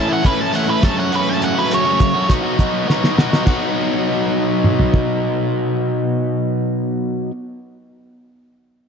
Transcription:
0.00 0.23 E3 medium
0.00 0.10 A5 medium
0.09 0.24 A3 soft
0.09 0.24 C#4 medium
0.09 0.25 E4 medium
0.13 0.26 F#5 medium
0.24 0.51 E3 medium
0.24 0.53 A3 medium
0.24 0.53 C#4 medium
0.24 0.54 E4 medium
0.24 0.40 B4 medium
0.24 kick medium
0.24 closed hi-hat medium
0.41 0.55 A5 medium
0.53 0.81 E3 medium
0.53 0.68 A3 medium
0.53 0.67 C#4 medium
0.53 0.66 E4 medium
0.53 0.69 F#5 medium
0.53 closed hi-hat medium
0.68 0.82 A3 soft
0.68 0.81 C#4 medium
0.68 0.81 E4 medium
0.68 0.84 B4 medium
0.82 1.10 F#2 medium
0.82 1.11 C#3 medium
0.82 0.97 F#3 medium
0.82 0.97 A3 medium
0.82 0.96 C#4 medium
0.82 0.96 F#4 medium
0.82 0.98 A5 medium
0.82 kick medium
0.82 closed hi-hat medium
0.97 1.11 F#3 soft
0.97 1.11 A3 medium
0.97 1.12 C#4 medium
0.97 1.12 F#4 medium
0.97 1.13 F#5 medium
1.11 1.68 F#2 medium
1.11 1.69 C#3 medium
1.11 1.56 F#3 medium
1.11 1.56 A3 medium
1.11 1.55 C#4 medium
1.11 1.54 F#4 medium
1.11 closed hi-hat medium
1.16 1.28 B4 medium
1.29 1.43 A5 medium
1.42 1.57 F#5 medium
1.42 closed hi-hat medium
1.55 1.69 F#3 soft
1.55 1.69 A3 medium
1.55 1.70 C#4 medium
1.55 1.71 F#4 medium
1.55 1.72 B4 medium
1.69 2.14 F#2 medium
1.69 2.14 C#3 medium
1.69 1.85 F#3 medium
1.69 1.85 A3 medium
1.69 1.84 C#4 medium
1.69 1.83 F#4 medium
1.69 closed hi-hat medium
1.74 2.30 C#5 medium
1.84 1.98 F#3 soft
1.84 1.98 A3 soft
1.84 1.98 C#4 medium
1.84 1.99 F#4 medium
1.99 muted overdriven electric guitar stroke soft
1.99 kick medium
1.99 closed hi-hat soft
2.13 2.28 F#3 soft
2.13 2.28 A3 soft
2.13 2.28 C#4 soft
2.13 2.27 F#4 medium
2.28 2.73 B2 medium
2.28 2.56 F#3 medium
2.28 2.44 B3 medium
2.28 2.43 D#4 medium
2.28 2.42 F#4 medium
2.28 kick medium
2.28 closed hi-hat medium
2.43 2.57 B3 soft
2.43 2.58 D#4 soft
2.43 2.58 F#4 medium
2.58 2.86 F#3 medium
2.58 2.87 B3 medium
2.58 2.87 D#4 medium
2.58 2.87 F#4 medium
2.58 kick medium
2.58 closed hi-hat soft
2.86 3.31 B2 medium
2.86 3.15 F#3 medium
2.86 3.03 B3 medium
2.86 3.02 D#4 medium
2.86 3.00 F#4 medium
2.86 snare soft
3.02 3.16 B3 soft
3.02 3.17 D#4 medium
3.02 3.17 F#4 medium
3.02 snare soft
3.17 3.44 F#3 medium
3.17 3.32 B3 medium
3.17 3.31 D#4 medium
3.17 3.29 F#4 medium
3.17 snare medium
3.31 3.45 B3 soft
3.31 3.45 D#4 medium
3.31 3.44 F#4 medium
3.31 snare medium
3.44 7.30 B2 medium
3.44 7.31 F#3 medium
3.44 7.31 B3 medium
3.44 7.32 D#4 medium
3.44 7.32 F#4 medium
3.44 kick medium
3.44 crash medium
4.64 mid tom soft
4.79 floor tom medium
4.94 kick medium

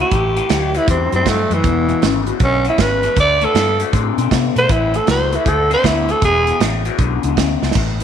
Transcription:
0.00 0.10 A2 medium
0.00 0.11 E3 medium
0.00 0.79 G4 loud
0.11 0.40 A1 medium
0.11 0.34 A2 medium
0.11 0.34 E3 medium
0.11 kick loud
0.11 closed hi-hat medium
0.36 0.48 A2 medium
0.36 0.49 E3 medium
0.36 closed hi-hat medium
0.49 0.78 D2 medium
0.49 0.72 A2 medium
0.49 0.72 F#3 medium
0.49 snare loud
0.49 closed hi-hat medium
0.75 0.86 A2 medium
0.75 0.87 E3 medium
0.75 0.89 E4 loud
0.75 closed hi-hat medium
0.87 1.06 E2 medium
0.87 1.10 A2 medium
0.87 1.10 G3 medium
0.87 1.13 C4 medium
0.87 kick loud
0.87 closed hi-hat medium
1.12 1.22 F#2 medium
1.12 1.24 A2 medium
1.12 1.25 G3 medium
1.12 1.30 C4 medium
1.12 closed hi-hat medium
1.25 1.44 G2 medium
1.25 1.48 A2 medium
1.25 1.48 F#3 medium
1.25 1.55 A3 medium
1.25 kick medium
1.25 snare loud
1.25 closed hi-hat medium
1.50 1.60 F#2 medium
1.50 1.63 A2 medium
1.50 1.63 E3 medium
1.50 2.26 E3 medium
1.50 closed hi-hat medium
1.64 1.92 E1 medium
1.64 1.86 E2 medium
1.64 1.86 B2 medium
1.64 kick loud
1.64 closed hi-hat medium
1.88 2.01 E2 medium
1.88 2.01 B2 medium
1.88 closed hi-hat medium
2.02 2.30 G#1 medium
2.02 2.24 E2 medium
2.02 2.25 C#3 loud
2.02 snare loud
2.02 closed hi-hat medium
2.26 2.39 E2 medium
2.26 2.39 B2 medium
2.26 closed hi-hat medium
2.40 2.68 B1 medium
2.40 2.63 E2 medium
2.40 2.63 D3 medium
2.40 2.66 C#4 loud
2.40 kick loud
2.40 closed hi-hat medium
2.65 2.77 E2 medium
2.65 2.77 D3 medium
2.65 closed hi-hat medium
2.69 2.83 E4 medium
2.78 3.06 G#1 medium
2.78 3.00 E2 medium
2.78 3.01 C#3 medium
2.78 3.17 B4 loud
2.78 kick medium
2.78 snare loud
2.78 closed hi-hat medium
3.03 3.15 E2 medium
3.03 3.15 B2 medium
3.03 closed hi-hat medium
3.16 3.45 D2 medium
3.16 3.38 D3 medium
3.16 3.39 A3 medium
3.16 kick loud
3.16 closed hi-hat medium
3.20 3.46 D5 loud
3.41 3.53 D3 medium
3.41 3.54 A3 medium
3.41 3.80 A4 loud
3.41 closed hi-hat medium
3.54 3.82 G2 medium
3.54 3.77 D3 medium
3.54 3.77 B3 medium
3.54 snare loud
3.54 closed hi-hat medium
3.80 3.92 D3 medium
3.80 3.92 A3 medium
3.80 closed hi-hat medium
3.93 4.11 A2 loud
3.93 4.15 D3 medium
3.93 4.15 C4 loud
3.93 kick loud
3.93 closed hi-hat medium
4.18 4.28 B2 medium
4.18 4.30 D3 medium
4.18 4.30 C4 medium
4.18 closed hi-hat medium
4.31 4.49 C3 medium
4.31 4.54 D3 medium
4.31 4.54 B3 medium
4.31 kick medium
4.31 snare loud
4.31 closed hi-hat medium
4.56 4.66 B2 medium
4.56 4.68 D3 medium
4.56 4.68 A3 medium
4.56 4.73 C5 loud
4.56 closed hi-hat medium
4.69 4.97 A1 loud
4.69 4.92 A2 medium
4.69 4.92 E3 medium
4.69 4.98 E4 loud
4.69 kick loud
4.69 closed hi-hat medium
4.94 5.06 A2 medium
4.94 5.07 E3 medium
4.94 5.09 A4 medium
4.94 closed hi-hat medium
5.07 5.36 C#2 medium
5.07 5.30 A2 medium
5.07 5.30 F#3 medium
5.07 5.37 C5 loud
5.07 snare loud
5.07 closed hi-hat medium
5.32 5.45 A2 medium
5.32 5.45 E3 medium
5.32 5.50 E4 medium
5.32 closed hi-hat medium
5.45 5.74 D2 medium
5.45 5.68 D3 medium
5.45 5.68 A3 medium
5.45 5.71 A4 medium
5.45 kick loud
5.45 closed hi-hat medium
5.70 5.82 D3 medium
5.70 5.83 C4 medium
5.70 5.88 C5 loud
5.70 closed hi-hat medium
5.83 6.12 D2 medium
5.83 6.06 D3 medium
5.83 6.06 B3 medium
5.83 6.13 E4 loud
5.83 kick medium
5.83 snare loud
5.83 closed hi-hat medium
6.08 6.21 D3 medium
6.08 6.21 A3 medium
6.08 6.24 A4 medium
6.08 closed hi-hat medium
6.21 6.50 E1 loud
6.21 6.44 E2 medium
6.21 6.44 B2 loud
6.21 6.61 G#4 loud
6.21 kick loud
6.21 closed hi-hat medium
6.46 6.59 E2 medium
6.46 6.59 B2 medium
6.46 closed hi-hat medium
6.60 6.88 A1 medium
6.60 6.83 E2 medium
6.60 6.83 C#3 medium
6.60 snare loud
6.60 closed hi-hat medium
6.85 6.98 E2 medium
6.85 6.98 B2 medium
6.85 closed hi-hat medium
6.98 7.17 B1 medium
6.98 7.21 E2 medium
6.98 7.22 D3 loud
6.98 kick loud
6.98 closed hi-hat medium
7.23 7.34 C#2 medium
7.23 7.36 E2 medium
7.23 7.37 D3 medium
7.23 closed hi-hat medium
7.37 7.55 D2 medium
7.37 7.60 E2 medium
7.37 7.60 C#3 medium
7.37 kick medium
7.37 snare loud
7.37 closed hi-hat medium
7.62 7.72 C#2 medium
7.62 7.74 E2 medium
7.62 7.75 B2 medium
7.62 snare medium
7.71 8.03 A1 medium
7.71 7.98 A2 medium
7.71 kick loud
7.71 snare medium
7.71 crash loud
7.76 7.98 E3 medium
8.00 8.04 A2 medium
8.00 8.04 E3 medium
8.00 closed hi-hat medium

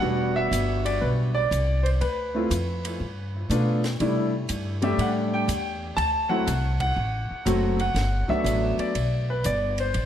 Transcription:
0.00 0.50 E1 medium
0.00 1.41 G3 medium
0.00 1.41 B3 soft
0.00 1.41 D4 medium
0.00 1.41 F#4 medium
0.00 0.38 F#5 loud
0.36 0.82 E5 medium
0.51 1.00 G1 medium
0.51 hi-hat pedal medium
0.51 ride medium
0.85 1.02 D5 medium
0.85 ride medium
1.01 1.50 B1 medium
1.01 1.09 B4 medium
1.35 1.86 D5 medium
1.51 1.99 C2 medium
1.51 hi-hat pedal soft
1.51 ride medium
1.83 1.88 C5 medium
1.83 ride soft
2.01 2.49 D2 medium
2.01 3.46 B4 medium
2.01 ride soft
2.34 2.49 A3 medium
2.34 2.49 C4 soft
2.34 2.49 E4 medium
2.34 2.50 F4 medium
2.51 2.98 F2 medium
2.51 hi-hat pedal medium
2.51 ride medium
2.85 ride medium
3.00 3.48 G2 medium
3.50 3.98 B2 medium
3.50 3.79 A3 medium
3.50 3.80 B3 medium
3.50 3.80 D4 medium
3.50 3.80 F4 medium
3.50 hi-hat pedal soft
3.50 ride medium
3.84 snare soft
3.84 ride soft
4.00 4.48 C3 medium
4.00 4.30 G3 medium
4.00 4.30 A3 medium
4.00 4.30 D4 medium
4.00 4.30 E4 medium
4.00 ride medium
4.49 4.97 G2 medium
4.49 hi-hat pedal medium
4.49 ride medium
4.82 5.44 G3 medium
4.82 5.45 A3 medium
4.82 5.45 D4 medium
4.82 5.45 G4 medium
4.82 5.00 E5 medium
4.82 ride soft
4.98 5.46 A2 medium
4.98 5.08 F#5 medium
4.98 ride medium
5.34 5.79 G5 medium
5.48 5.96 E2 medium
5.48 hi-hat pedal soft
5.48 ride medium
5.97 6.45 D2 medium
5.97 6.28 A5 loud
5.97 ride medium
6.29 6.44 F#3 medium
6.29 6.45 A3 medium
6.29 6.45 C4 medium
6.29 6.45 E4 medium
6.29 6.76 F#5 medium
6.47 6.95 C2 medium
6.47 hi-hat pedal medium
6.47 ride medium
6.80 7.75 F#5 medium
6.80 kick medium
6.80 ride medium
6.96 7.27 A1 medium
7.31 muted upright bass stroke soft
7.45 7.94 F#1 medium
7.45 7.76 F#3 medium
7.45 7.76 A3 medium
7.45 7.76 C4 medium
7.45 7.76 F#4 medium
7.45 hi-hat pedal soft
7.45 ride medium
7.79 8.31 F#5 medium
7.79 ride soft
7.95 8.26 G1 medium
7.95 snare soft
7.95 ride medium
8.28 8.91 F#3 medium
8.28 8.91 A3 soft
8.28 8.92 B3 soft
8.28 8.92 D4 medium
8.28 8.75 E5 medium
8.28 muted upright bass stroke soft
8.28 kick medium
8.44 8.76 A1 medium
8.44 hi-hat pedal medium
8.44 ride medium
8.78 9.25 D5 medium
8.78 muted upright bass stroke soft
8.78 ride soft
8.95 9.43 B1 medium
8.95 ride medium
9.30 9.44 B4 medium
9.44 9.93 G1 medium
9.44 9.76 D5 medium
9.44 hi-hat pedal medium
9.44 ride medium
9.78 10.06 C5 medium
9.78 ride soft
9.94 10.06 A1 medium
9.94 ride medium

